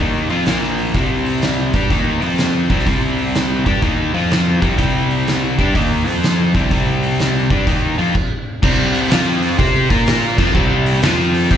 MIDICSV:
0, 0, Header, 1, 4, 480
1, 0, Start_track
1, 0, Tempo, 480000
1, 947, Time_signature, 4, 2, 24, 8
1, 11571, End_track
2, 0, Start_track
2, 0, Title_t, "Distorted electric guitar"
2, 0, Program_c, 0, 30
2, 0, Note_on_c, 0, 51, 84
2, 0, Note_on_c, 0, 58, 84
2, 0, Note_on_c, 0, 63, 94
2, 289, Note_off_c, 0, 51, 0
2, 291, Note_off_c, 0, 58, 0
2, 292, Note_off_c, 0, 63, 0
2, 296, Note_on_c, 0, 53, 80
2, 301, Note_on_c, 0, 60, 81
2, 304, Note_on_c, 0, 65, 97
2, 454, Note_off_c, 0, 53, 0
2, 462, Note_off_c, 0, 60, 0
2, 463, Note_off_c, 0, 65, 0
2, 464, Note_on_c, 0, 46, 79
2, 466, Note_on_c, 0, 53, 76
2, 468, Note_on_c, 0, 58, 88
2, 941, Note_off_c, 0, 46, 0
2, 942, Note_off_c, 0, 53, 0
2, 943, Note_off_c, 0, 58, 0
2, 946, Note_on_c, 0, 48, 92
2, 954, Note_on_c, 0, 55, 91
2, 957, Note_on_c, 0, 60, 99
2, 1733, Note_off_c, 0, 48, 0
2, 1733, Note_off_c, 0, 55, 0
2, 1739, Note_off_c, 0, 60, 0
2, 1745, Note_on_c, 0, 55, 78
2, 1750, Note_on_c, 0, 62, 76
2, 1753, Note_on_c, 0, 67, 83
2, 1904, Note_off_c, 0, 55, 0
2, 1904, Note_on_c, 0, 51, 83
2, 1907, Note_off_c, 0, 62, 0
2, 1908, Note_off_c, 0, 67, 0
2, 1912, Note_on_c, 0, 58, 92
2, 1915, Note_on_c, 0, 63, 94
2, 2224, Note_off_c, 0, 51, 0
2, 2224, Note_on_c, 0, 53, 76
2, 2230, Note_off_c, 0, 58, 0
2, 2230, Note_on_c, 0, 60, 91
2, 2232, Note_off_c, 0, 63, 0
2, 2232, Note_on_c, 0, 65, 90
2, 2695, Note_off_c, 0, 53, 0
2, 2698, Note_off_c, 0, 60, 0
2, 2699, Note_off_c, 0, 65, 0
2, 2700, Note_on_c, 0, 48, 75
2, 2704, Note_on_c, 0, 55, 77
2, 2710, Note_on_c, 0, 60, 81
2, 2846, Note_off_c, 0, 48, 0
2, 2853, Note_off_c, 0, 55, 0
2, 2858, Note_off_c, 0, 60, 0
2, 2858, Note_on_c, 0, 48, 92
2, 2865, Note_on_c, 0, 55, 101
2, 2870, Note_on_c, 0, 60, 92
2, 3644, Note_off_c, 0, 55, 0
2, 3650, Note_off_c, 0, 48, 0
2, 3655, Note_off_c, 0, 60, 0
2, 3656, Note_on_c, 0, 55, 81
2, 3659, Note_on_c, 0, 62, 81
2, 3664, Note_on_c, 0, 67, 87
2, 3821, Note_off_c, 0, 55, 0
2, 3821, Note_on_c, 0, 51, 85
2, 3822, Note_off_c, 0, 62, 0
2, 3825, Note_off_c, 0, 67, 0
2, 3826, Note_on_c, 0, 58, 90
2, 3830, Note_on_c, 0, 63, 107
2, 4132, Note_off_c, 0, 51, 0
2, 4134, Note_off_c, 0, 58, 0
2, 4136, Note_off_c, 0, 63, 0
2, 4136, Note_on_c, 0, 53, 85
2, 4142, Note_on_c, 0, 60, 81
2, 4144, Note_on_c, 0, 65, 86
2, 4608, Note_off_c, 0, 53, 0
2, 4610, Note_off_c, 0, 60, 0
2, 4612, Note_on_c, 0, 48, 84
2, 4616, Note_off_c, 0, 65, 0
2, 4619, Note_on_c, 0, 55, 88
2, 4622, Note_on_c, 0, 60, 89
2, 4764, Note_off_c, 0, 48, 0
2, 4768, Note_off_c, 0, 55, 0
2, 4771, Note_off_c, 0, 60, 0
2, 4776, Note_on_c, 0, 48, 102
2, 4780, Note_on_c, 0, 55, 108
2, 4783, Note_on_c, 0, 60, 102
2, 5570, Note_off_c, 0, 48, 0
2, 5572, Note_off_c, 0, 55, 0
2, 5574, Note_off_c, 0, 60, 0
2, 5583, Note_on_c, 0, 55, 84
2, 5591, Note_on_c, 0, 62, 92
2, 5592, Note_on_c, 0, 67, 87
2, 5744, Note_off_c, 0, 55, 0
2, 5745, Note_on_c, 0, 51, 91
2, 5748, Note_off_c, 0, 62, 0
2, 5748, Note_on_c, 0, 58, 91
2, 5750, Note_off_c, 0, 67, 0
2, 5752, Note_on_c, 0, 63, 91
2, 6059, Note_off_c, 0, 51, 0
2, 6059, Note_on_c, 0, 53, 80
2, 6066, Note_off_c, 0, 58, 0
2, 6066, Note_on_c, 0, 60, 81
2, 6069, Note_off_c, 0, 63, 0
2, 6069, Note_on_c, 0, 65, 93
2, 6534, Note_off_c, 0, 53, 0
2, 6538, Note_off_c, 0, 60, 0
2, 6539, Note_off_c, 0, 65, 0
2, 6551, Note_on_c, 0, 48, 84
2, 6554, Note_on_c, 0, 55, 82
2, 6556, Note_on_c, 0, 60, 88
2, 6706, Note_off_c, 0, 48, 0
2, 6711, Note_off_c, 0, 55, 0
2, 6712, Note_off_c, 0, 60, 0
2, 6718, Note_on_c, 0, 48, 98
2, 6727, Note_on_c, 0, 55, 108
2, 6728, Note_on_c, 0, 60, 103
2, 7494, Note_off_c, 0, 55, 0
2, 7501, Note_off_c, 0, 48, 0
2, 7506, Note_off_c, 0, 60, 0
2, 7506, Note_on_c, 0, 55, 73
2, 7510, Note_on_c, 0, 62, 77
2, 7515, Note_on_c, 0, 67, 87
2, 7667, Note_off_c, 0, 55, 0
2, 7669, Note_off_c, 0, 62, 0
2, 7671, Note_off_c, 0, 67, 0
2, 7672, Note_on_c, 0, 51, 91
2, 7677, Note_on_c, 0, 58, 87
2, 7679, Note_on_c, 0, 63, 103
2, 7972, Note_off_c, 0, 51, 0
2, 7976, Note_off_c, 0, 58, 0
2, 7976, Note_on_c, 0, 53, 78
2, 7977, Note_off_c, 0, 63, 0
2, 7980, Note_on_c, 0, 60, 83
2, 7981, Note_on_c, 0, 65, 92
2, 8142, Note_off_c, 0, 53, 0
2, 8144, Note_off_c, 0, 60, 0
2, 8144, Note_off_c, 0, 65, 0
2, 8624, Note_on_c, 0, 48, 98
2, 8628, Note_on_c, 0, 55, 103
2, 8633, Note_on_c, 0, 60, 109
2, 9093, Note_off_c, 0, 60, 0
2, 9096, Note_off_c, 0, 48, 0
2, 9100, Note_on_c, 0, 53, 91
2, 9101, Note_off_c, 0, 55, 0
2, 9105, Note_on_c, 0, 60, 97
2, 9112, Note_on_c, 0, 65, 102
2, 9574, Note_off_c, 0, 60, 0
2, 9580, Note_off_c, 0, 53, 0
2, 9586, Note_off_c, 0, 65, 0
2, 9586, Note_on_c, 0, 60, 94
2, 9590, Note_on_c, 0, 67, 104
2, 9593, Note_on_c, 0, 72, 95
2, 9893, Note_off_c, 0, 60, 0
2, 9895, Note_off_c, 0, 67, 0
2, 9896, Note_off_c, 0, 72, 0
2, 9904, Note_on_c, 0, 58, 86
2, 9908, Note_on_c, 0, 65, 96
2, 9910, Note_on_c, 0, 70, 101
2, 10374, Note_off_c, 0, 58, 0
2, 10375, Note_off_c, 0, 65, 0
2, 10377, Note_off_c, 0, 70, 0
2, 10382, Note_on_c, 0, 53, 88
2, 10385, Note_on_c, 0, 60, 87
2, 10393, Note_on_c, 0, 65, 89
2, 10542, Note_off_c, 0, 53, 0
2, 10543, Note_off_c, 0, 60, 0
2, 10547, Note_off_c, 0, 65, 0
2, 10548, Note_on_c, 0, 48, 102
2, 10553, Note_on_c, 0, 55, 104
2, 10555, Note_on_c, 0, 60, 108
2, 11018, Note_off_c, 0, 60, 0
2, 11021, Note_off_c, 0, 48, 0
2, 11024, Note_off_c, 0, 55, 0
2, 11027, Note_on_c, 0, 53, 96
2, 11030, Note_on_c, 0, 60, 93
2, 11036, Note_on_c, 0, 65, 97
2, 11492, Note_off_c, 0, 60, 0
2, 11500, Note_off_c, 0, 53, 0
2, 11504, Note_off_c, 0, 65, 0
2, 11504, Note_on_c, 0, 60, 93
2, 11510, Note_on_c, 0, 67, 105
2, 11514, Note_on_c, 0, 72, 105
2, 11571, Note_off_c, 0, 60, 0
2, 11571, Note_off_c, 0, 67, 0
2, 11571, Note_off_c, 0, 72, 0
2, 11571, End_track
3, 0, Start_track
3, 0, Title_t, "Picked electric bass"
3, 0, Program_c, 1, 34
3, 0, Note_on_c, 1, 39, 84
3, 278, Note_off_c, 1, 39, 0
3, 302, Note_on_c, 1, 41, 74
3, 455, Note_off_c, 1, 41, 0
3, 465, Note_on_c, 1, 34, 85
3, 913, Note_off_c, 1, 34, 0
3, 944, Note_on_c, 1, 36, 83
3, 1702, Note_off_c, 1, 36, 0
3, 1738, Note_on_c, 1, 43, 91
3, 1894, Note_off_c, 1, 43, 0
3, 1906, Note_on_c, 1, 39, 85
3, 2201, Note_off_c, 1, 39, 0
3, 2221, Note_on_c, 1, 41, 87
3, 2669, Note_off_c, 1, 41, 0
3, 2700, Note_on_c, 1, 36, 88
3, 2856, Note_off_c, 1, 36, 0
3, 2866, Note_on_c, 1, 36, 86
3, 3624, Note_off_c, 1, 36, 0
3, 3665, Note_on_c, 1, 43, 92
3, 3819, Note_off_c, 1, 43, 0
3, 3826, Note_on_c, 1, 39, 82
3, 4122, Note_off_c, 1, 39, 0
3, 4140, Note_on_c, 1, 41, 84
3, 4589, Note_off_c, 1, 41, 0
3, 4627, Note_on_c, 1, 36, 82
3, 4780, Note_off_c, 1, 36, 0
3, 4789, Note_on_c, 1, 36, 91
3, 5546, Note_off_c, 1, 36, 0
3, 5591, Note_on_c, 1, 43, 86
3, 5743, Note_off_c, 1, 43, 0
3, 5755, Note_on_c, 1, 39, 83
3, 6047, Note_off_c, 1, 39, 0
3, 6076, Note_on_c, 1, 41, 88
3, 6519, Note_off_c, 1, 41, 0
3, 6548, Note_on_c, 1, 36, 85
3, 6701, Note_off_c, 1, 36, 0
3, 6712, Note_on_c, 1, 36, 80
3, 7468, Note_off_c, 1, 36, 0
3, 7507, Note_on_c, 1, 43, 91
3, 7661, Note_off_c, 1, 43, 0
3, 7668, Note_on_c, 1, 39, 83
3, 7963, Note_off_c, 1, 39, 0
3, 7991, Note_on_c, 1, 41, 81
3, 8143, Note_off_c, 1, 41, 0
3, 8629, Note_on_c, 1, 36, 90
3, 9076, Note_off_c, 1, 36, 0
3, 9118, Note_on_c, 1, 41, 90
3, 9560, Note_off_c, 1, 41, 0
3, 9588, Note_on_c, 1, 48, 92
3, 9881, Note_off_c, 1, 48, 0
3, 9905, Note_on_c, 1, 46, 88
3, 10350, Note_off_c, 1, 46, 0
3, 10381, Note_on_c, 1, 41, 89
3, 10535, Note_off_c, 1, 41, 0
3, 10551, Note_on_c, 1, 36, 92
3, 10994, Note_off_c, 1, 36, 0
3, 11031, Note_on_c, 1, 41, 90
3, 11474, Note_off_c, 1, 41, 0
3, 11509, Note_on_c, 1, 48, 83
3, 11571, Note_off_c, 1, 48, 0
3, 11571, End_track
4, 0, Start_track
4, 0, Title_t, "Drums"
4, 295, Note_on_c, 9, 46, 44
4, 395, Note_off_c, 9, 46, 0
4, 459, Note_on_c, 9, 46, 62
4, 467, Note_on_c, 9, 38, 91
4, 559, Note_off_c, 9, 46, 0
4, 567, Note_off_c, 9, 38, 0
4, 631, Note_on_c, 9, 38, 30
4, 731, Note_off_c, 9, 38, 0
4, 778, Note_on_c, 9, 46, 44
4, 878, Note_off_c, 9, 46, 0
4, 944, Note_on_c, 9, 46, 65
4, 945, Note_on_c, 9, 36, 100
4, 1044, Note_off_c, 9, 46, 0
4, 1045, Note_off_c, 9, 36, 0
4, 1262, Note_on_c, 9, 46, 44
4, 1362, Note_off_c, 9, 46, 0
4, 1420, Note_on_c, 9, 46, 71
4, 1428, Note_on_c, 9, 38, 105
4, 1520, Note_off_c, 9, 46, 0
4, 1528, Note_off_c, 9, 38, 0
4, 1734, Note_on_c, 9, 46, 47
4, 1739, Note_on_c, 9, 36, 94
4, 1834, Note_off_c, 9, 46, 0
4, 1839, Note_off_c, 9, 36, 0
4, 1904, Note_on_c, 9, 36, 97
4, 1904, Note_on_c, 9, 46, 64
4, 2004, Note_off_c, 9, 36, 0
4, 2004, Note_off_c, 9, 46, 0
4, 2221, Note_on_c, 9, 46, 46
4, 2321, Note_off_c, 9, 46, 0
4, 2381, Note_on_c, 9, 46, 62
4, 2389, Note_on_c, 9, 38, 96
4, 2481, Note_off_c, 9, 46, 0
4, 2489, Note_off_c, 9, 38, 0
4, 2699, Note_on_c, 9, 46, 46
4, 2700, Note_on_c, 9, 36, 100
4, 2791, Note_on_c, 9, 38, 29
4, 2799, Note_off_c, 9, 46, 0
4, 2800, Note_off_c, 9, 36, 0
4, 2866, Note_on_c, 9, 36, 95
4, 2868, Note_on_c, 9, 46, 67
4, 2891, Note_off_c, 9, 38, 0
4, 2966, Note_off_c, 9, 36, 0
4, 2968, Note_off_c, 9, 46, 0
4, 3188, Note_on_c, 9, 46, 44
4, 3288, Note_off_c, 9, 46, 0
4, 3348, Note_on_c, 9, 46, 63
4, 3356, Note_on_c, 9, 38, 104
4, 3448, Note_off_c, 9, 46, 0
4, 3456, Note_off_c, 9, 38, 0
4, 3662, Note_on_c, 9, 36, 85
4, 3667, Note_on_c, 9, 46, 44
4, 3762, Note_off_c, 9, 36, 0
4, 3767, Note_off_c, 9, 46, 0
4, 3824, Note_on_c, 9, 46, 58
4, 3825, Note_on_c, 9, 36, 99
4, 3924, Note_off_c, 9, 46, 0
4, 3925, Note_off_c, 9, 36, 0
4, 4145, Note_on_c, 9, 46, 43
4, 4245, Note_off_c, 9, 46, 0
4, 4310, Note_on_c, 9, 46, 57
4, 4318, Note_on_c, 9, 38, 104
4, 4410, Note_off_c, 9, 46, 0
4, 4418, Note_off_c, 9, 38, 0
4, 4623, Note_on_c, 9, 36, 101
4, 4628, Note_on_c, 9, 46, 43
4, 4723, Note_off_c, 9, 36, 0
4, 4728, Note_off_c, 9, 46, 0
4, 4787, Note_on_c, 9, 36, 93
4, 4788, Note_on_c, 9, 46, 67
4, 4887, Note_off_c, 9, 36, 0
4, 4888, Note_off_c, 9, 46, 0
4, 5106, Note_on_c, 9, 46, 43
4, 5206, Note_off_c, 9, 46, 0
4, 5274, Note_on_c, 9, 46, 66
4, 5282, Note_on_c, 9, 38, 104
4, 5374, Note_off_c, 9, 46, 0
4, 5382, Note_off_c, 9, 38, 0
4, 5586, Note_on_c, 9, 36, 94
4, 5593, Note_on_c, 9, 46, 42
4, 5686, Note_off_c, 9, 36, 0
4, 5693, Note_off_c, 9, 46, 0
4, 5752, Note_on_c, 9, 36, 96
4, 5757, Note_on_c, 9, 46, 65
4, 5852, Note_off_c, 9, 36, 0
4, 5857, Note_off_c, 9, 46, 0
4, 6073, Note_on_c, 9, 46, 48
4, 6173, Note_off_c, 9, 46, 0
4, 6234, Note_on_c, 9, 46, 65
4, 6242, Note_on_c, 9, 38, 104
4, 6334, Note_off_c, 9, 46, 0
4, 6342, Note_off_c, 9, 38, 0
4, 6547, Note_on_c, 9, 36, 99
4, 6551, Note_on_c, 9, 46, 51
4, 6647, Note_off_c, 9, 36, 0
4, 6651, Note_off_c, 9, 46, 0
4, 6713, Note_on_c, 9, 36, 98
4, 6719, Note_on_c, 9, 46, 72
4, 6813, Note_off_c, 9, 36, 0
4, 6819, Note_off_c, 9, 46, 0
4, 7031, Note_on_c, 9, 46, 46
4, 7131, Note_off_c, 9, 46, 0
4, 7194, Note_on_c, 9, 46, 67
4, 7202, Note_on_c, 9, 38, 103
4, 7294, Note_off_c, 9, 46, 0
4, 7302, Note_off_c, 9, 38, 0
4, 7504, Note_on_c, 9, 36, 90
4, 7505, Note_on_c, 9, 46, 44
4, 7604, Note_off_c, 9, 36, 0
4, 7605, Note_off_c, 9, 46, 0
4, 7670, Note_on_c, 9, 36, 92
4, 7675, Note_on_c, 9, 46, 64
4, 7770, Note_off_c, 9, 36, 0
4, 7775, Note_off_c, 9, 46, 0
4, 7986, Note_on_c, 9, 46, 43
4, 8086, Note_off_c, 9, 46, 0
4, 8149, Note_on_c, 9, 36, 96
4, 8152, Note_on_c, 9, 49, 80
4, 8249, Note_off_c, 9, 36, 0
4, 8252, Note_off_c, 9, 49, 0
4, 8629, Note_on_c, 9, 36, 108
4, 8631, Note_on_c, 9, 49, 124
4, 8729, Note_off_c, 9, 36, 0
4, 8731, Note_off_c, 9, 49, 0
4, 8946, Note_on_c, 9, 46, 55
4, 9046, Note_off_c, 9, 46, 0
4, 9110, Note_on_c, 9, 46, 88
4, 9118, Note_on_c, 9, 38, 113
4, 9210, Note_off_c, 9, 46, 0
4, 9218, Note_off_c, 9, 38, 0
4, 9427, Note_on_c, 9, 46, 57
4, 9527, Note_off_c, 9, 46, 0
4, 9588, Note_on_c, 9, 36, 112
4, 9591, Note_on_c, 9, 46, 83
4, 9688, Note_off_c, 9, 36, 0
4, 9691, Note_off_c, 9, 46, 0
4, 9904, Note_on_c, 9, 36, 101
4, 9906, Note_on_c, 9, 46, 61
4, 10004, Note_off_c, 9, 36, 0
4, 10006, Note_off_c, 9, 46, 0
4, 10070, Note_on_c, 9, 46, 83
4, 10078, Note_on_c, 9, 38, 105
4, 10170, Note_off_c, 9, 46, 0
4, 10178, Note_off_c, 9, 38, 0
4, 10383, Note_on_c, 9, 36, 98
4, 10383, Note_on_c, 9, 57, 99
4, 10483, Note_off_c, 9, 36, 0
4, 10483, Note_off_c, 9, 57, 0
4, 10548, Note_on_c, 9, 36, 103
4, 10648, Note_off_c, 9, 36, 0
4, 10862, Note_on_c, 9, 46, 59
4, 10962, Note_off_c, 9, 46, 0
4, 11028, Note_on_c, 9, 46, 85
4, 11036, Note_on_c, 9, 38, 114
4, 11128, Note_off_c, 9, 46, 0
4, 11136, Note_off_c, 9, 38, 0
4, 11343, Note_on_c, 9, 46, 59
4, 11443, Note_off_c, 9, 46, 0
4, 11509, Note_on_c, 9, 36, 106
4, 11511, Note_on_c, 9, 46, 79
4, 11571, Note_off_c, 9, 36, 0
4, 11571, Note_off_c, 9, 46, 0
4, 11571, End_track
0, 0, End_of_file